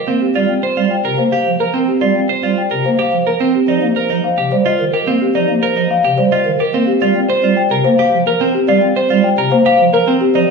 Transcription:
Already playing: clean electric guitar G4, marimba A#4
0.07 pipe organ A#3, clean electric guitar C4
0.22 marimba G4
0.35 pipe organ G3, clean electric guitar F4, marimba D5
0.49 pipe organ C4
0.63 marimba C5, clean electric guitar C5
0.77 pipe organ G3, clean electric guitar F4
0.91 marimba G5
1.05 pipe organ C3, clean electric guitar A#4
1.18 pipe organ A#3, marimba C5
1.32 clean electric guitar G4, marimba F5
1.46 pipe organ F3
1.60 marimba A#4, clean electric guitar A#4
1.74 clean electric guitar C4, pipe organ C4
1.88 marimba G4
2.01 pipe organ G3, clean electric guitar F4, marimba D5
2.16 pipe organ C4
2.29 clean electric guitar C5, marimba C5
2.43 pipe organ G3, clean electric guitar F4
2.58 marimba G5
2.71 pipe organ C3, clean electric guitar A#4
2.85 pipe organ A#3, marimba C5
2.99 clean electric guitar G4, marimba F5
3.13 pipe organ F3
3.27 clean electric guitar A#4, marimba A#4
3.40 pipe organ C4, clean electric guitar C4
3.55 marimba G4
3.68 pipe organ F3, clean electric guitar D#4, marimba D5
3.82 pipe organ A#3
3.96 clean electric guitar A#4, marimba C5
4.10 pipe organ F3, clean electric guitar D#4
4.24 marimba F5
4.38 pipe organ C3, clean electric guitar G4
4.52 pipe organ G3, marimba C5
4.66 clean electric guitar F4, marimba D#5
4.80 pipe organ D#3
4.94 clean electric guitar G4, marimba A#4
5.07 pipe organ A#3, clean electric guitar C4
5.22 marimba G4
5.35 pipe organ F3, clean electric guitar D#4, marimba D5
5.49 pipe organ A#3
5.63 clean electric guitar A#4, marimba C5
5.77 pipe organ F3, clean electric guitar D#4
5.91 marimba F5
6.05 pipe organ C3, clean electric guitar G4
6.18 pipe organ G3, marimba C5
6.32 clean electric guitar F4, marimba D#5
6.46 pipe organ D#3
6.59 clean electric guitar G4, marimba A#4
6.74 pipe organ A#3, clean electric guitar C4
6.87 marimba G4
7.01 pipe organ G3, clean electric guitar F4, marimba D5
7.16 pipe organ C4
7.29 marimba C5, clean electric guitar C5
7.43 pipe organ G3, clean electric guitar F4
7.57 marimba G5
7.71 pipe organ C3, clean electric guitar A#4
7.84 pipe organ A#3, marimba C5
7.99 clean electric guitar G4, marimba F5
8.13 pipe organ F3
8.27 marimba A#4, clean electric guitar A#4
8.41 pipe organ C4, clean electric guitar C4
8.55 marimba G4
8.68 pipe organ G3, clean electric guitar F4, marimba D5
8.82 pipe organ C4
8.96 clean electric guitar C5, marimba C5
9.10 pipe organ G3, clean electric guitar F4
9.24 marimba G5
9.38 pipe organ C3, clean electric guitar A#4
9.51 pipe organ A#3, marimba C5
9.66 clean electric guitar G4, marimba F5
9.79 pipe organ F3
9.93 marimba A#4, clean electric guitar A#4
10.07 pipe organ C4, clean electric guitar C4
10.21 marimba G4
10.35 pipe organ F3, clean electric guitar D#4, marimba D5

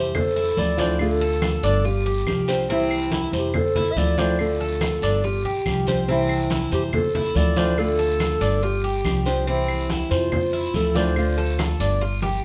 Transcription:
Already playing: upright bass F2, nylon-string guitar C3 E3 G3 C4 E4, clarinet G4, cuban tres C5
0.14 clarinet A4, muted nylon-string guitar stroke, high conga, low conga, long guiro, claves
0.36 cuban tres E4, high conga
0.56 upright bass D2, nylon-string guitar E3 A3 C4 F4, clarinet D5, high conga, short guiro
0.77 nylon-string guitar E3 A3 C4 F4, cuban tres D4, clarinet C5, high conga, short guiro
0.99 nylon-string guitar D3 A3 C4 F4, clarinet A4, high conga, long guiro, claves
1.21 cuban tres A4, high conga
1.42 high conga, short guiro, claves
1.63 upright bass G1, cuban tres D4, high conga, short guiro
1.84 cuban tres F4, clarinet G4, muted nylon-string guitar stroke, high conga, long guiro
2.06 cuban tres G4, high conga
2.26 upright bass C2, nylon-string guitar F3 C4 D4 G4, high conga, short guiro, claves
2.48 nylon-string guitar F3 C4 D4 G4, cuban tres C5, short guiro
2.69 nylon-string guitar C3 E3 G3 C4 E4, cuban tres C4, high conga, long guiro
2.91 high conga, claves
3.12 cuban tres E4, high conga, short guiro
3.33 upright bass F2, clarinet G4, cuban tres C5, high conga, short guiro
3.54 clarinet A4, muted nylon-string guitar stroke, high conga, low conga, long guiro, claves
3.75 cuban tres E4, high conga, low conga
3.92 nylon-string guitar E3, clarinet E5
3.96 upright bass D2, nylon-string guitar A3 C4 F4, clarinet D5, high conga, short guiro
4.18 nylon-string guitar E3 A3 C4 F4, cuban tres D4, clarinet C5, high conga, short guiro
4.38 nylon-string guitar D3 A3 C4 F4, clarinet A4, high conga, long guiro, claves
4.60 cuban tres A4, high conga
4.81 high conga, short guiro, claves
5.02 upright bass G1, cuban tres D4, high conga, short guiro
5.23 cuban tres F4, clarinet G4, muted nylon-string guitar stroke, high conga, long guiro
5.44 upright bass B1, cuban tres G4, high conga
5.66 upright bass C2, nylon-string guitar F3 C4 D4 G4, high conga, short guiro, claves
5.87 nylon-string guitar F3 C4 D4 G4, cuban tres C5, high conga, short guiro
6.08 nylon-string guitar C3 E3 G3 C4 E4, cuban tres C4, high conga, long guiro
6.29 high conga, claves
6.50 cuban tres E4, high conga, short guiro
6.71 upright bass F2, clarinet G4, cuban tres C5, high conga, short guiro
6.93 clarinet A4, muted nylon-string guitar stroke, high conga, low conga, long guiro, claves
7.15 cuban tres E4, high conga, low conga
7.35 upright bass D2, nylon-string guitar E3 A3 C4 F4, clarinet D5, high conga, short guiro
7.56 nylon-string guitar E3 A3 C4 F4, cuban tres D4, clarinet C5, high conga, short guiro
7.77 nylon-string guitar D3 A3 C4 F4, clarinet A4, high conga, long guiro, claves
7.99 cuban tres A4, high conga
8.20 high conga, short guiro, claves
8.41 upright bass G1, cuban tres D4, high conga, short guiro
8.62 cuban tres F4, clarinet G4, muted nylon-string guitar stroke, high conga, long guiro
8.84 cuban tres G4, high conga
9.05 upright bass C2, nylon-string guitar F3 C4 D4 G4, high conga, short guiro, claves
9.26 nylon-string guitar F3 C4 D4 G4, cuban tres C5, short guiro
9.47 nylon-string guitar C3 E3 G3 C4 E4, cuban tres C4, high conga, long guiro
9.68 high conga, claves
9.90 cuban tres E4, high conga, short guiro
10.11 upright bass F2, clarinet F4, cuban tres C5, high conga, short guiro
10.32 muted nylon-string guitar stroke, high conga, low conga, long guiro, claves
10.53 cuban tres E4, high conga
10.74 upright bass D2, nylon-string guitar E3 A3 C4 F4, clarinet A4, high conga, short guiro
10.95 nylon-string guitar E3 A3 C4 F4, cuban tres D4, clarinet C5, high conga, short guiro
11.16 nylon-string guitar D3 A3 C4 F4, high conga, long guiro, claves
11.38 cuban tres A4, high conga
11.59 high conga, short guiro, claves
11.80 upright bass G1, cuban tres D4, high conga, short guiro
12.01 cuban tres F4, muted nylon-string guitar stroke, high conga, long guiro
12.22 cuban tres G4, high conga

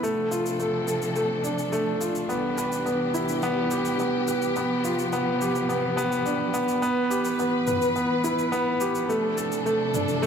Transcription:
0.03 string section C3 F3 D4 A4, grand piano A3, shaker
0.31 grand piano F4, shaker
0.46 shaker
0.59 grand piano A3, shaker
0.88 grand piano A4, shaker
1.02 shaker
1.16 grand piano A3, shaker
1.44 grand piano D4, shaker
1.59 shaker
1.72 grand piano A3, shaker
2.01 grand piano F4, shaker
2.15 shaker
2.28 string section C2 E3 G4, grand piano B3, shaker
2.58 grand piano B4, shaker
2.72 shaker
2.86 grand piano B3, shaker
3.14 grand piano E4, shaker
3.29 shaker
3.42 grand piano B3, shaker
3.71 grand piano G4, shaker
3.85 shaker
3.99 grand piano B3, shaker
4.28 grand piano B4, shaker
4.42 shaker
4.55 string section C3 F3 B3, grand piano B3, shaker
4.84 grand piano F4, shaker
4.99 shaker
5.13 grand piano B3, shaker
5.41 grand piano G4, shaker
5.56 shaker
5.69 grand piano B3, shaker
5.97 grand piano B3, shaker
6.12 shaker
6.26 grand piano D4, shaker
6.54 grand piano B3, shaker
6.68 shaker
6.82 string section E3 B4, grand piano B3, shaker
7.10 grand piano G4, shaker
7.25 shaker
7.39 grand piano B3, shaker
7.67 grand piano B4, mid tom, shaker
7.82 shaker
7.96 grand piano B3, shaker
8.24 grand piano E4, shaker
8.39 shaker
8.52 grand piano B3, shaker
8.81 grand piano G4, shaker
8.95 shaker
9.09 string section C3 F3 D4 A4, grand piano A3, shaker
9.38 grand piano A4, shaker
9.52 shaker
9.66 grand piano A3, shaker
9.94 grand piano D4, mid tom, shaker
10.08 shaker
10.22 grand piano A3, shaker

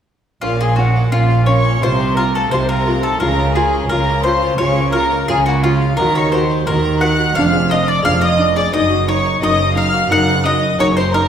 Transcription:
0.41 double bass section A#1, cello section A#2, harpsichord A#2, viola section C#4, mandolin F4, violin section F4 F5
0.61 harpsichord C#4, violin section G#4 G#5, mandolin G#4
0.76 viola section C#4, harpsichord F4, mandolin F#4, violin section F#4 F#5
0.96 harpsichord A#3
1.12 double bass section A#1, cello section A#2, harpsichord A#2 C#4, viola section C#4, violin section F4 F5, mandolin F4
1.31 harpsichord F4
1.46 harpsichord A#3, viola section C#4, mandolin C#5, violin section C#5 C#6
1.65 harpsichord C#4
1.81 double bass section C2, harpsichord C3, cello section C3, viola section F4, violin section C5 C6, mandolin C5
2.00 harpsichord D#4
2.16 harpsichord F4, viola section F4, violin section A#4 A#5, mandolin A#4
2.34 harpsichord A3, violin section A4 A5, mandolin A4
2.51 double bass section C2, cello section C3, harpsichord C3 D#4, viola section F4, mandolin C5, violin section C5 C6
2.68 harpsichord F4, violin section A#4 A#5, mandolin A#4
2.87 harpsichord A3, viola section F4
3.03 harpsichord D#4, violin section A4 A5, mandolin A4
3.19 double bass section C#2, cello section C#3, harpsichord C#3, viola section F4, violin section A#4 A#5, mandolin A#4
3.39 harpsichord F4
3.54 harpsichord A#3, viola section F4, violin section G#4 G#5, mandolin G#4
3.73 harpsichord C#4
3.89 double bass section C#2, cello section C#3, harpsichord C#3 F4, viola section F4, mandolin A#4, violin section A#4 A#5
4.08 harpsichord A#3
4.23 harpsichord C#4, viola section F4, mandolin C5, violin section C5 C6
4.42 harpsichord F4
4.58 double bass section C#2, cello section C#3, harpsichord C#3, viola section F4, mandolin C#5, violin section C#5 C#6
4.77 harpsichord A#3
4.92 viola section F4, harpsichord F4, mandolin A#4, violin section A#4 A#5
5.12 harpsichord A#3
5.28 double bass section C#2, cello section C#3, harpsichord C#3 F4, viola section F4, mandolin G#4, violin section G#4 G#5
5.46 harpsichord A#3, mandolin F#4, violin section F#4 F#5
5.63 harpsichord C#4, violin section F4 F5, mandolin F4, viola section F4
5.81 harpsichord F4
5.97 double bass section D#2, harpsichord D#3, cello section D#3, viola section F#4, mandolin A#4, violin section A#4 A#5
6.15 harpsichord F#4, violin section C#5 C#6, mandolin C#5
6.32 viola section F#4, harpsichord A#4, mandolin C5, violin section C5 C6
6.50 harpsichord D#4
6.66 double bass section D#2, harpsichord D#3 F#4, cello section D#3, viola section F#4, mandolin A#4, violin section A#4 A#5
6.84 harpsichord A#4
7.00 harpsichord D#4, viola section F#4, mandolin F#5, violin section F#5 F#6
7.19 harpsichord F#4
7.34 double bass section F1, harpsichord F2, cello section F2, viola section D4, mandolin F5, violin section F5 F6
7.52 harpsichord G#4
7.68 viola section D4, harpsichord A#4, mandolin D#5, violin section D#5 D#6
7.86 harpsichord D4, mandolin D5, violin section D5 D6
8.03 double bass section F1, harpsichord F2 G#4, cello section F2, viola section D4, mandolin F5, violin section F5 F6
8.20 harpsichord A#4, mandolin D#5, violin section D#5 D#6
8.37 harpsichord D4, viola section D4
8.56 harpsichord G#4, mandolin D5, violin section D5 D6
8.72 double bass section F#1, harpsichord F#2, cello section F#2, viola section D#4, mandolin D#5, violin section D#5 D#6
8.90 harpsichord F#4
9.07 viola section D#4, harpsichord A#4, mandolin C#5, violin section C#5 C#6
9.25 harpsichord D#4
9.41 double bass section F#1, harpsichord F#2 F#4, cello section F#2, viola section D#4, violin section D#5 D#6, mandolin D#5
9.58 harpsichord A#4
9.75 harpsichord D#4, viola section D#4, violin section F5 F6, mandolin F5
9.93 harpsichord F#4
10.09 double bass section F#1, harpsichord F#2, cello section F#2, viola section D#4, violin section F#5 F#6, mandolin F#5
10.27 harpsichord D#4
10.44 viola section D#4, harpsichord A#4, mandolin D#5, violin section D#5 D#6
10.61 harpsichord D#4
10.78 double bass section F#1, harpsichord F#2 F#4, cello section F#2, viola section D#4, violin section C#5 C#6, mandolin C#5
10.97 harpsichord A#4, mandolin C5, violin section C5 C6
11.13 viola section D#4, harpsichord D#4, violin section A#4 A#5, mandolin A#4

